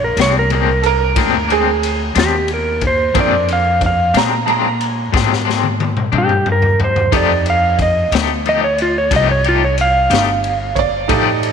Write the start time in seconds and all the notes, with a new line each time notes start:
Already playing: A#1 G#3 D4 C5
0.04 A#4
0.17 C2 G#3 C4 D4, snare, ride
0.21 C#5
0.39 A#4
0.50 A#2 G#3 C4 D4, ride
0.55 A#4
0.82 A4 A#4, ride
1.16 D2 A#2 G#3 C4 D4, kick, snare, ride
1.49 G#3 C4 D4 G#4, ride
1.83 ride
2.15 D#2 G#3 C4 D4, snare, ride
2.19 G4
2.48 ride
2.54 A#4
2.81 kick, ride
2.87 C5
3.14 F2 A#2 G#3 C4 D4 A#4 C5, kick, ride
3.20 D5
3.48 ride
3.53 F5
3.81 kick, ride
3.86 F5
4.14 A#2 G#3 C4 D4 A#5, snare, ride
4.46 A#2 G#3 C4 D4 A5 A#5, ride
4.81 ride
5.12 G#2 A#2 G#3 C4 D4, kick, snare
5.33 snare
5.45 G#3 C4 D4
5.50 snare
5.64 high tom
5.80 high tom
5.97 mid tom
6.12 G2 G#3 C4 D4, mid tom
6.18 G4
6.29 mid tom
6.46 mid tom
6.52 A#4
6.62 floor tom
6.80 floor tom
6.84 C5
6.96 floor tom
7.12 F2 F3 A3 D#4 G4 A4, kick, ride
7.17 D5
7.46 ride
7.50 F5
7.79 D#5, kick, ride
8.11 D2 A3 D#4 G4, snare, ride
8.46 F3 A3 D#4 G4 D#5, ride
8.64 C#5
8.78 F4, ride
8.98 C#5
9.11 C2 F3 A3 D#4 G4, kick, snare, ride
9.16 D#5
9.31 C#5
9.44 A3 D#4 G4, ride
9.49 F4
9.65 C#5
9.78 F5, ride
10.10 G1 A3 D#4 G4, snare, ride
10.44 ride
10.75 C#5 D5, kick, ride
11.08 A1 F3 A3 D#4 G4 A4, kick, ride
11.43 ride